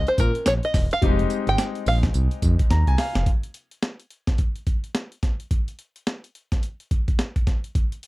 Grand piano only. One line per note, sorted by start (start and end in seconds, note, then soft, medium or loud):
0.00 0.70 G#3 medium
0.00 0.70 C4 medium
0.00 0.71 C#4 medium
0.00 0.71 F4 medium
1.01 1.10 G3 medium
1.01 3.22 C4 medium
1.01 3.23 D#4 medium
1.01 3.23 G4 medium
1.08 3.25 G#3 medium
2.71 2.86 A#5 medium
2.88 2.98 G#5 medium
2.99 3.25 F5 medium